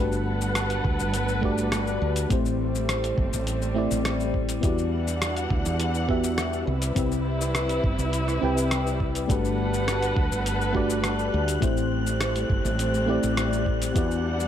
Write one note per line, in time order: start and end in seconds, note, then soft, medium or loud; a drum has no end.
0.00 0.80 G1 medium
0.00 2.28 G3 medium
0.00 1.39 A3 medium
0.00 1.40 D4 medium
0.00 1.40 F#4 medium
0.00 1.41 G4 medium
0.00 2.28 A4 medium
0.00 2.28 B4 medium
0.00 1.41 B4 medium
0.00 2.28 F#5 medium
0.12 shaker soft
0.41 shaker medium
0.55 cross-stick loud
0.55 closed hi-hat medium
0.55 shaker medium
0.70 closed hi-hat soft
0.70 shaker soft
0.85 0.97 D2 medium
0.85 kick loud
0.99 1.97 G1 medium
0.99 shaker medium
1.14 closed hi-hat medium
1.14 shaker medium
1.28 shaker soft
1.41 2.26 A3 medium
1.41 2.27 D4 medium
1.41 2.27 F#4 medium
1.41 2.28 G4 medium
1.41 2.28 D5 loud
1.41 kick medium
1.58 shaker medium
1.72 cross-stick loud
1.72 closed hi-hat medium
1.72 shaker medium
1.87 shaker soft
2.02 2.25 D2 medium
2.16 closed hi-hat soft
2.16 shaker medium
2.29 3.13 A1 medium
2.29 6.63 G3 medium
2.29 3.72 A3 medium
2.29 4.61 A3 medium
2.29 3.72 C4 medium
2.29 4.61 C4 medium
2.29 3.73 E4 medium
2.29 3.74 G4 medium
2.29 3.74 C5 medium
2.29 kick loud
2.29 closed hi-hat medium
2.29 shaker medium
2.46 shaker soft
2.75 shaker medium
2.89 cross-stick loud
2.89 closed hi-hat medium
2.89 shaker medium
3.04 closed hi-hat soft
3.04 shaker soft
3.18 3.29 G1 medium
3.18 kick loud
3.33 3.86 A1 medium
3.33 shaker medium
3.47 closed hi-hat medium
3.47 shaker medium
3.62 shaker soft
3.74 4.59 A3 medium
3.74 4.59 C4 medium
3.74 4.60 E4 medium
3.74 4.61 G4 medium
3.74 4.61 D5 loud
3.91 4.59 A1 medium
3.91 shaker medium
4.05 cross-stick loud
4.05 closed hi-hat medium
4.05 shaker medium
4.20 shaker soft
4.34 kick medium
4.49 closed hi-hat soft
4.49 shaker medium
4.61 5.46 E2 medium
4.61 6.66 E3 medium
4.61 6.04 B3 medium
4.61 6.66 D4 medium
4.61 6.05 E4 medium
4.61 6.06 F#4 medium
4.61 6.06 G4 medium
4.61 6.66 F#5 medium
4.61 kick loud
4.61 closed hi-hat medium
4.61 shaker medium
4.65 6.07 D5 medium
4.78 shaker soft
5.08 shaker medium
5.22 cross-stick loud
5.22 closed hi-hat medium
5.22 shaker medium
5.37 closed hi-hat soft
5.37 shaker soft
5.50 5.62 D2 medium
5.50 kick loud
5.65 6.63 E2 medium
5.65 shaker medium
5.80 closed hi-hat medium
5.80 shaker medium
5.94 shaker soft
6.08 6.65 B3 medium
6.08 6.66 E4 medium
6.08 6.66 F#4 medium
6.08 6.66 G4 medium
6.08 6.66 E5 loud
6.08 kick medium
6.24 shaker medium
6.38 cross-stick loud
6.38 closed hi-hat medium
6.38 shaker medium
6.53 shaker soft
6.67 6.90 C2 medium
6.67 9.27 C3 medium
6.67 11.58 G3 medium
6.67 9.27 E4 medium
6.67 9.26 B4 medium
6.82 closed hi-hat soft
6.82 shaker medium
6.95 7.79 C2 medium
6.95 8.38 C4 medium
6.95 8.38 E4 medium
6.95 8.39 G4 medium
6.95 8.39 B4 medium
6.95 8.40 E5 medium
6.95 kick loud
6.95 closed hi-hat medium
6.95 shaker medium
7.12 shaker soft
7.41 shaker medium
7.55 cross-stick loud
7.55 closed hi-hat medium
7.55 shaker medium
7.69 closed hi-hat soft
7.69 shaker soft
7.84 7.95 G1 medium
7.84 kick loud
7.99 8.42 C2 medium
7.99 shaker medium
8.13 closed hi-hat medium
8.13 shaker medium
8.28 cross-stick soft
8.28 shaker soft
8.41 9.25 C2 medium
8.41 9.25 C4 medium
8.41 9.26 E4 medium
8.41 9.26 G4 medium
8.41 9.27 B4 medium
8.41 9.27 G5 medium
8.57 shaker medium
8.71 cross-stick loud
8.71 closed hi-hat medium
8.71 shaker medium
8.87 shaker soft
9.00 kick medium
9.15 closed hi-hat soft
9.15 shaker medium
9.28 10.12 G1 medium
9.28 10.71 A3 medium
9.28 10.71 D4 medium
9.28 10.72 F#4 medium
9.28 10.72 G4 medium
9.28 11.60 A4 medium
9.28 11.60 B4 medium
9.28 10.73 B4 medium
9.28 11.60 F#5 medium
9.28 14.48 F#6 medium
9.28 kick loud
9.28 closed hi-hat medium
9.28 shaker medium
9.45 shaker soft
9.74 shaker medium
9.88 cross-stick medium
9.88 closed hi-hat medium
9.88 shaker medium
10.02 closed hi-hat soft
10.02 shaker soft
10.16 10.28 D2 medium
10.16 kick loud
10.32 11.29 G1 medium
10.32 shaker medium
10.46 closed hi-hat medium
10.46 shaker soft
10.61 shaker soft
10.73 11.58 A3 medium
10.73 11.58 D4 medium
10.73 11.59 F#4 medium
10.73 11.59 G4 medium
10.73 11.60 D5 loud
10.73 kick medium
10.90 shaker medium
11.04 cross-stick medium
11.04 closed hi-hat medium
11.04 shaker medium
11.19 shaker soft
11.34 11.57 D2 medium
11.48 closed hi-hat soft
11.48 shaker medium
11.60 12.45 A1 medium
11.60 14.48 G3 medium
11.60 13.04 A3 medium
11.60 13.93 A3 medium
11.60 13.04 C4 medium
11.60 13.93 C4 medium
11.60 13.04 E4 medium
11.60 13.05 G4 medium
11.60 13.06 C5 medium
11.60 kick loud
11.60 closed hi-hat medium
11.60 shaker soft
11.77 shaker soft
12.07 shaker medium
12.21 cross-stick medium
12.21 closed hi-hat medium
12.21 shaker medium
12.36 closed hi-hat soft
12.36 shaker soft
12.50 12.62 G1 medium
12.50 kick loud
12.65 13.18 A1 medium
12.65 shaker medium
12.79 closed hi-hat medium
12.79 shaker medium
12.94 shaker soft
13.06 13.91 A3 medium
13.06 13.92 C4 medium
13.06 13.92 E4 medium
13.06 13.93 G4 medium
13.06 13.93 D5 loud
13.23 13.91 A1 medium
13.23 shaker medium
13.37 cross-stick loud
13.37 closed hi-hat medium
13.37 shaker medium
13.53 shaker soft
13.66 kick medium
13.82 closed hi-hat soft
13.82 shaker medium
13.94 14.48 E2 loud
13.94 14.48 E3 medium
13.94 14.48 B3 medium
13.94 14.48 D4 medium
13.94 14.48 E4 medium
13.94 14.48 F#4 medium
13.94 14.48 G4 medium
13.94 14.48 D5 medium
13.94 14.48 F#5 medium
13.94 kick loud
13.94 closed hi-hat medium
13.94 shaker soft
14.11 shaker soft
14.40 shaker medium